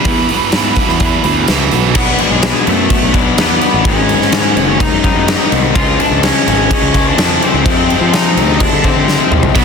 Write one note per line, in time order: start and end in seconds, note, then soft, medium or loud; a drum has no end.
0.00 1.44 B4 medium
0.05 0.24 E2 medium
0.05 0.29 E2 medium
0.05 0.30 B2 medium
0.05 0.28 E3 medium
0.05 0.30 E3 loud
0.05 0.28 G#3 loud
0.05 0.29 B3 medium
0.05 kick loud
0.05 open hi-hat medium
0.29 0.52 E2 medium
0.29 0.53 B2 medium
0.29 0.51 E3 medium
0.29 0.53 E3 medium
0.29 0.51 G#3 medium
0.29 open hi-hat soft
0.52 0.77 E2 medium
0.52 0.72 G#2 medium
0.52 0.77 B2 medium
0.52 0.75 E3 medium
0.52 0.78 E3 medium
0.52 0.76 G#3 medium
0.52 0.76 B3 medium
0.52 snare loud
0.52 open hi-hat medium
0.76 1.00 E2 medium
0.76 1.01 B2 loud
0.76 0.98 E3 medium
0.76 1.02 E3 medium
0.76 0.98 G#3 medium
0.76 kick medium
0.76 snare soft
0.76 open hi-hat soft
0.89 1.18 E2 medium
0.89 snare soft
1.00 1.24 E2 medium
1.00 1.24 B2 medium
1.00 1.22 E3 medium
1.00 1.25 E3 medium
1.00 1.22 G#3 medium
1.00 kick loud
1.00 open hi-hat medium
1.24 1.46 D2 medium
1.24 1.48 E2 medium
1.24 1.48 B2 medium
1.24 1.46 E3 medium
1.24 1.49 E3 medium
1.24 1.47 G#3 medium
1.24 1.47 B3 medium
1.24 open hi-hat soft
1.48 1.70 C#2 medium
1.48 1.72 E2 medium
1.48 1.72 B2 medium
1.48 1.70 E3 medium
1.48 1.72 E3 medium
1.48 1.70 G#3 medium
1.48 snare loud
1.48 open hi-hat medium
1.71 1.94 B1 medium
1.71 1.95 E2 medium
1.71 1.95 B2 medium
1.71 1.93 E3 medium
1.71 1.95 E3 medium
1.71 1.94 G#3 medium
1.71 open hi-hat soft
1.95 2.15 B1 loud
1.95 3.12 B2 medium
1.95 3.13 F#3 medium
1.95 2.18 B3 medium
1.95 3.12 B3 medium
1.95 3.11 D4 medium
1.95 2.20 B4 loud
1.95 kick loud
1.95 crash loud
1.95 crash medium
2.19 2.64 G#3 medium
2.19 2.64 G#4 medium
2.19 crash medium
2.31 2.51 B1 medium
2.42 snare loud
2.42 crash medium
2.67 2.86 F#2 medium
2.67 3.12 A3 medium
2.67 3.11 A4 medium
2.67 crash medium
2.90 kick medium
2.90 crash medium
3.03 3.31 B1 medium
3.13 3.36 B2 medium
3.13 3.37 F#3 medium
3.13 3.36 B3 medium
3.13 3.36 D4 medium
3.13 kick medium
3.13 crash medium
3.37 3.58 E2 medium
3.37 3.84 B2 medium
3.37 3.84 F#3 medium
3.37 3.84 B3 medium
3.37 3.83 B3 medium
3.37 3.85 D4 medium
3.37 snare loud
3.37 crash medium
3.41 3.84 B4 medium
3.61 crash medium
3.74 3.83 A1 medium
3.84 4.14 G#1 medium
3.84 5.02 G#2 medium
3.84 5.02 D#3 medium
3.84 5.04 G#3 medium
3.84 5.03 B3 medium
3.84 4.77 C#4 medium
3.84 5.01 D#4 medium
3.84 4.80 C#5 medium
3.84 kick loud
3.84 crash medium
4.09 crash medium
4.21 4.58 G#2 medium
4.21 snare soft
4.32 snare loud
4.32 crash medium
4.57 4.85 F#1 medium
4.57 crash medium
4.80 5.48 D#4 medium
4.80 5.48 D#5 medium
4.80 kick medium
4.80 crash medium
4.92 5.11 F#2 medium
5.03 5.26 G#2 medium
5.03 5.27 D#3 medium
5.03 5.28 G#3 medium
5.03 5.26 B3 medium
5.03 5.26 D#4 medium
5.03 kick medium
5.03 crash medium
5.16 5.35 F#2 medium
5.27 5.73 G#2 medium
5.27 5.74 D#3 medium
5.27 5.76 G#3 medium
5.27 5.75 B3 medium
5.27 5.75 D#4 medium
5.27 snare loud
5.27 crash medium
5.52 5.71 C2 medium
5.52 crash medium
5.75 5.95 C#2 loud
5.75 6.92 C#3 medium
5.75 6.93 F3 medium
5.75 6.93 G#3 loud
5.75 6.92 C#4 medium
5.75 5.98 F4 medium
5.75 6.00 F5 loud
5.75 kick loud
5.75 crash medium
6.00 6.22 D4 medium
6.00 6.24 D5 medium
6.00 crash medium
6.11 6.30 C#2 medium
6.23 6.46 C#4 medium
6.23 6.47 C#5 medium
6.23 snare loud
6.23 crash medium
6.48 6.66 G#1 medium
6.48 6.70 C#4 medium
6.48 6.70 C#5 medium
6.48 crash medium
6.71 7.05 C#4 medium
6.71 7.08 C#5 medium
6.71 kick medium
6.71 crash medium
6.82 7.11 C#2 medium
6.94 7.16 C#3 medium
6.94 7.17 F3 medium
6.94 7.17 G#3 medium
6.94 7.16 C#4 medium
6.94 kick medium
6.94 crash medium
7.07 7.40 D4 medium
7.07 7.44 D5 loud
7.17 7.37 F2 medium
7.17 7.64 C#3 medium
7.17 7.64 F3 medium
7.17 7.65 G#3 medium
7.17 7.65 C#4 medium
7.17 snare loud
7.17 crash medium
7.42 8.10 C4 medium
7.42 8.11 C5 medium
7.42 crash medium
7.54 7.63 C#2 medium
7.64 8.82 F2 medium
7.64 7.94 F2 medium
7.64 8.83 C3 medium
7.64 8.83 F3 medium
7.64 8.83 G#3 medium
7.64 8.82 C4 medium
7.64 kick loud
7.64 crash medium
7.90 crash medium
8.01 8.38 F3 medium
8.13 8.57 D#4 medium
8.13 8.62 D#5 medium
8.13 snare loud
8.13 crash medium
8.37 8.66 D2 medium
8.37 crash medium
8.60 8.83 D4 medium
8.60 8.84 D5 medium
8.60 kick medium
8.60 crash medium
8.72 8.92 D3 medium
8.83 9.05 F2 medium
8.83 9.05 C3 medium
8.83 9.06 F3 medium
8.83 9.07 G#3 medium
8.83 9.06 C4 medium
8.83 9.29 C4 medium
8.83 9.30 C5 medium
8.83 kick medium
8.83 crash soft
8.96 9.15 D3 medium
9.06 9.53 F2 medium
9.06 9.53 C3 medium
9.06 9.54 F3 medium
9.06 9.54 G#3 medium
9.06 9.55 C4 medium
9.06 snare medium
9.31 9.51 C2 medium
9.31 mid tom medium
9.43 floor tom medium
9.54 9.65 B1 loud
9.54 9.65 B2 medium
9.54 9.65 F#3 medium
9.54 9.65 B3 medium
9.54 9.65 D4 medium
9.54 9.65 B4 loud
9.54 kick loud
9.54 crash medium